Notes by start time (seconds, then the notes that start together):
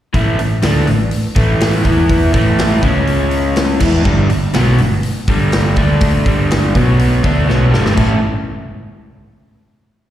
0.13 A1 A2 E3 A3, kick, open hi-hat
0.39 A1 A2 E3, open hi-hat
0.62 D2 D3 A3 D4, snare, open hi-hat
0.87 A1 A2 E3, open hi-hat
1.11 open hi-hat
1.35 A1 A2 E3 A3, kick, open hi-hat
1.60 snare, open hi-hat
1.84 E2 E3 B3 E4, kick, open hi-hat
2.10 kick, open hi-hat
2.33 A1 A2 E3 A3, kick, open hi-hat
2.59 snare, open hi-hat
2.82 C#2 C#3 G#3 C#4, kick, open hi-hat
3.07 open hi-hat
3.31 open hi-hat
3.56 snare, open hi-hat
3.80 E2 E3 B3 E4, kick, crash
4.03 G1 G2 D3 G3, kick
4.29 G1 G2 D3, open hi-hat
4.53 B1 B2 F#3 B3, snare, open hi-hat
4.78 G1 G2 D3, open hi-hat
5.03 open hi-hat
5.28 G1 G2 D3 G3, kick, open hi-hat
5.52 snare, open hi-hat
5.76 D2 D3 A3 D4, kick, open hi-hat
6.01 kick, open hi-hat
6.26 G1 G2 D3 G3, kick, open hi-hat
6.51 snare, open hi-hat
6.75 B1 B2 F#3 B3, kick, open hi-hat
6.99 open hi-hat
7.24 D2 D3 A3 D4, kick, open hi-hat
7.48 B1 B2 F#3 B3, snare
7.70 G1 G2 D3 G3, snare
7.86 snare
7.95 A1 A3 C#4 E4 A4, kick, crash